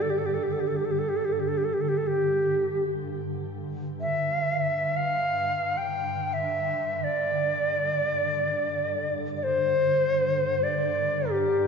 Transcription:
Already playing: G2 D3 G4
0.02 A4
0.10 G4
0.18 A4
0.26 G4
0.34 A4
0.43 G4
0.52 A4
0.60 G4
0.68 A4
0.76 G4
0.85 A4
0.91 G4
0.99 A4
1.09 G4
1.17 A4
1.25 G4
1.32 A4
1.40 G4
1.48 A4
1.57 G4
1.64 A4
1.73 G4
1.81 A4
1.89 G4
1.97 A4
2.07 G4
3.18 G2 D3
4.01 E5
4.97 F5
5.78 G5
6.33 E5
7.04 D5
9.36 D5
9.44 C5
10.63 D5
11.25 A#4
11.31 G4

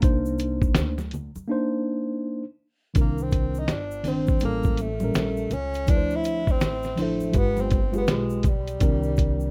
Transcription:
0.01 C2 A#3 D4 D#4 C5, kick, closed hi-hat, shaker
0.26 shaker
0.38 closed hi-hat, shaker
0.62 kick, shaker
0.75 D2, snare, closed hi-hat, low conga, shaker
0.98 snare, high conga, shaker
1.11 closed hi-hat, low conga, shaker
1.36 muted upright bass stroke, high conga, shaker
1.48 A#3 D4 D#4 C5
2.94 C2 D#3 C4 D4 A#4, kick, closed hi-hat, shaker
3.01 A#3
3.18 shaker
3.22 C4
3.31 kick, closed hi-hat, shaker
3.55 shaker
3.59 D#4
3.68 G1, snare, closed hi-hat, shaker
3.73 D4
3.91 shaker
4.04 D#3 C4 D4, open hi-hat, low conga, shaker
4.08 C4 C5
4.27 kick, high conga, shaker
4.40 A1 G3 A#3 C#4, closed hi-hat, shaker
4.45 A#3 A4
4.63 kick, high conga, shaker
4.77 A3, closed hi-hat, shaker
5.00 A#2 G3 C#4, high conga, shaker
5.04 A#4
5.14 A#1, snare, closed hi-hat, shaker
5.37 shaker
5.51 C#2 C#4, closed hi-hat, low conga, shaker
5.74 closed hi-hat, shaker
5.86 D2 F3 D4 E4, kick, closed hi-hat, shaker
5.90 B4
5.97 C5
6.10 shaker
6.15 E4
6.24 closed hi-hat, shaker
6.47 C4, kick, shaker
6.61 A1, snare, closed hi-hat, shaker
6.83 snare, shaker
6.96 F3 D4 E4 C5, open hi-hat, low conga, shaker
7.02 A3
7.20 high conga, shaker
7.32 G1 G#3 F4 G4 B4, kick, closed hi-hat, shaker
7.38 B3
7.57 C4, high conga, shaker
7.71 kick, closed hi-hat, shaker
7.92 G#3 F4 G4 G#4, high conga, shaker
7.98 B3
8.02 B4
8.07 B1 G#3, snare, closed hi-hat, shaker
8.30 shaker
8.43 kick, closed hi-hat, low conga, shaker
8.48 G3
8.67 closed hi-hat, shaker
8.79 C2 D#3 C4 D4 A#4, kick, closed hi-hat, shaker
9.03 shaker
9.17 kick, closed hi-hat, shaker
9.40 shaker

